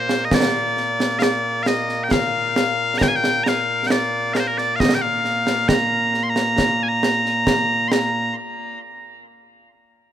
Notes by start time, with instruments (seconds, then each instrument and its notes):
Already playing: bagpipes A#2 A#3 C5
0.09 snare
0.25 bagpipes D#5
0.31 bagpipes D5, concert bass drum, snare
0.77 snare
1.00 snare
1.19 bagpipes D5 F5, snare
1.63 bagpipes F5, snare
1.67 bagpipes D#5
1.89 snare
2.04 bagpipes G5
2.11 bagpipes F5, concert bass drum, snare
2.56 snare
2.98 bagpipes A#5, concert bass drum, snare
3.03 bagpipes G5
3.08 bagpipes G#5
3.16 bagpipes G5
3.24 snare
3.44 bagpipes A#5, snare
3.48 bagpipes F5
3.87 bagpipes G5, snare
3.91 bagpipes D5
4.34 bagpipes A#4 F5, snare
4.39 bagpipes C5
4.47 bagpipes A#4
4.58 bagpipes D5, snare
4.76 bagpipes F5
4.80 bagpipes D#5, concert bass drum, snare
4.94 bagpipes G5
5.02 bagpipes F5
5.25 snare
5.47 snare
5.69 bagpipes A#5, concert bass drum, snare
6.14 snare
6.23 bagpipes C6
6.30 bagpipes A#5
6.36 snare
6.58 concert bass drum, snare
6.83 bagpipes G#5
6.89 bagpipes A#5
7.03 snare
7.26 snare
7.47 concert bass drum, snare
7.88 bagpipes A#5 C6, snare